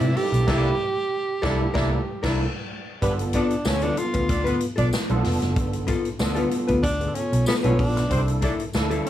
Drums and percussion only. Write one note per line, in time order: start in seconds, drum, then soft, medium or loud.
0.01 closed hi-hat soft
0.16 open hi-hat medium
0.34 closed hi-hat medium
0.48 kick loud
0.48 snare medium
0.48 crash medium
1.43 kick loud
1.43 snare loud
1.75 kick loud
1.75 snare loud
2.24 kick loud
2.24 snare loud
2.24 crash medium
3.02 kick loud
3.02 closed hi-hat medium
3.19 closed hi-hat medium
3.33 kick medium
3.33 closed hi-hat medium
3.50 closed hi-hat soft
3.65 snare loud
3.65 tambourine medium
3.82 closed hi-hat medium
3.97 closed hi-hat medium
4.14 kick loud
4.14 closed hi-hat medium
4.29 kick loud
4.29 closed hi-hat loud
4.46 closed hi-hat soft
4.60 closed hi-hat medium
4.78 kick medium
4.78 closed hi-hat medium
4.93 snare loud
4.93 tambourine loud
5.09 closed hi-hat soft
5.24 snare soft
5.24 open hi-hat medium
5.42 snare soft
5.42 closed hi-hat medium
5.56 kick loud
5.56 closed hi-hat medium
5.73 closed hi-hat soft
5.88 kick loud
5.88 closed hi-hat medium
6.05 closed hi-hat soft
6.19 snare loud
6.19 tambourine medium
6.36 closed hi-hat medium
6.51 closed hi-hat medium
6.68 kick medium
6.68 closed hi-hat medium
6.84 kick loud
6.84 closed hi-hat loud
7.01 closed hi-hat soft
7.15 closed hi-hat medium
7.33 closed hi-hat medium
7.46 snare loud
7.46 tambourine loud
7.64 closed hi-hat soft
7.79 kick loud
7.79 open hi-hat medium
7.97 snare soft
7.97 closed hi-hat medium
8.11 kick loud
8.11 closed hi-hat medium
8.28 closed hi-hat medium
8.42 kick loud
8.42 closed hi-hat medium
8.60 closed hi-hat soft
8.73 snare loud
8.73 tambourine medium
8.91 closed hi-hat medium
9.06 closed hi-hat medium